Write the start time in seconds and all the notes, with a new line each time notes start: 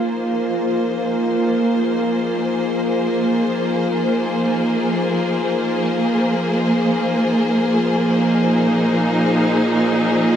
Already playing: F3 A#3 D#4 F4 G#4 C5
7.69 A#2
8.08 D#4